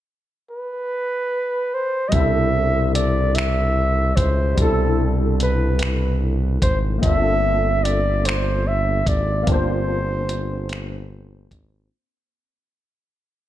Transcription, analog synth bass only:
2.14 C2
4.18 C#2
4.59 C2
6.63 G#1
7.03 G1
9.08 G#1
9.48 G1
11.52 G#1

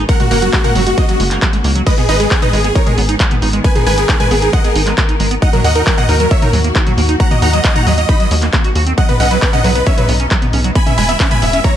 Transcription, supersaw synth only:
0.09 A#4 F#5
0.20 F#4
0.31 A#4 F#5
0.42 F#4
0.53 F#4
0.64 A#4 F#5
0.76 F#4
0.86 F#4
0.98 F#4 D#5
1.09 F#4
1.86 B4 D#5
1.98 G#4
2.09 B4 D#5
2.20 G#4
2.31 G#4
2.42 B4 D#5
2.53 G#4
2.64 G#4
2.76 A#4 C#5
2.87 G#4
3.65 B4 G#5
3.76 G#4
3.87 B4 G#5
3.98 G#4
4.09 G#4
4.20 B4 G#5
4.31 G#4
4.42 G#4
4.53 D#5 F#5
4.64 G#4
5.42 D#5 F#5
5.53 A#4
5.64 D#5 F#5
5.76 A#4
5.87 A#4
5.98 D#5 F#5
6.09 A#4
6.20 A#4
6.31 C#5 E5
6.42 A#4
7.20 F#5 A#5
7.31 D#5
7.42 F#5 A#5
7.53 D#5
7.65 D#5
7.76 F#5 A#5
7.87 D#5
7.98 D#5
8.09 D#5 B5
8.20 D#5
8.98 D#5 F#5
9.09 B4
9.20 D#5 F#5
9.31 B4
9.42 B4
9.53 D#5 F#5
9.64 B4
9.75 B4
9.86 C#5 E5
9.98 B4
10.76 G#5 B5
10.87 E5
10.98 G#5 B5
11.09 E5
11.20 E5
11.31 G#5 B5
11.42 E5
11.53 E5
11.64 C#5 A#5

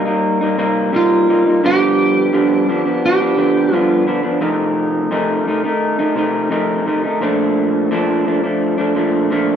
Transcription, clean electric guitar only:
0.05 G3 A#3 D#4
0.41 G3 A#3 D#4
0.57 C3 G3 A#3 D#4
0.92 C3 G3 A#3 D#4
1.28 C3 G3 A#3 D#4
1.46 G3 A#3 D#4
1.63 G2 D3 F3 B3 D4
2.33 G2 D3 F3 B3 D4
2.68 D3 F3 B3 D4
2.85 F3 B3 D4
3.20 F3 B3 D4
3.37 D3 F3 B3 D4
3.72 G2 D3 F3 B3 D4
4.06 D3 F3 B3 D4
4.23 F3 B3 D4
4.41 F2 C3 D#3 A3 D#4
5.11 F2 C3 D#3 A3 D#4
5.46 C3 D#3 A3 D#4
5.64 D#3 A3 D#4
5.99 D#3 A3 D#4
6.15 C3 D#3 A3 D#4
6.50 F2 C3 D#3 A3 D#4
6.86 C3 D#3 A3 D#4
7.04 D#3 A3 D#4
7.21 A#2 F3 A3 D4
7.91 A#2 F3 A3 D4
8.26 A#2 F3 A3 D4
8.43 F3 A3 D4
8.78 F3 A3 D4
8.95 A#2 F3 A3 D4
9.30 A#2 F3 A3 D4

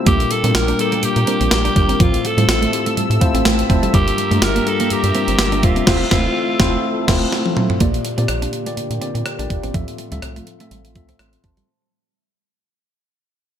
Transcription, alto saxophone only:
0.07 G4
0.31 A4
0.56 A#4
0.81 A4
1.05 G4
1.53 G4
2.02 F4
2.27 A4
3.95 G4
4.44 A#4
4.69 A4
4.93 G4
5.65 F4

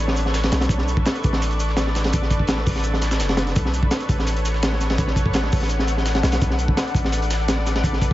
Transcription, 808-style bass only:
Already playing: A1
0.52 B1
0.69 B1
1.24 A1
2.67 A1
3.20 F#1
3.56 B1
4.09 A1
5.53 A1
6.24 B1
6.42 B1
6.95 A1

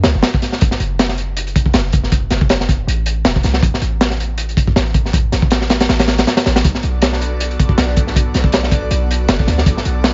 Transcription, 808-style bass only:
0.05 C#2
0.15 F#1
0.62 F#1
0.80 F#1
1.74 F#1
2.31 F#1
2.87 A1
3.25 E1
3.44 C2
3.63 A1
3.82 A1
4.76 A1
5.33 A1
5.89 A1
6.46 A1
6.65 B1
6.84 B1
7.78 B1
8.35 B1
8.91 B1
9.29 F#1
9.48 D2
9.66 B1
9.85 B1

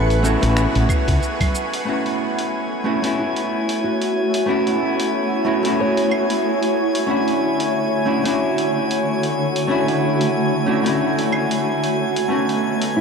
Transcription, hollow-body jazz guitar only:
Already playing: A3 B3 C#4 E4 F#4
0.23 A3 B3 C#4 E4 F#4
0.41 A3 B3 C#4 E4
0.45 F#4
1.85 A3 B3 C#4 E4 F#4
2.84 A3 B3 C#4 E4 F#4
3.02 A3 B3 C#4 E4
3.06 F#4
4.46 A3 B3 C#4 E4 F#4
5.45 A3 B3 C#4 E4 F#4
5.63 A3 B3 C#4 E4
5.67 F#4
7.07 A3 C#4 D4 E4 F#4
8.05 A3 C#4 D4 E4 F#4
8.24 A3 C#4 D4 E4
8.28 F#4
9.67 A3 C#4 D4 E4 F#4
10.66 A3 C#4 D4 E4 F#4
10.84 A3 C#4 D4 E4
10.88 F#4
12.28 A3 B3 C#4 D#4 F#4

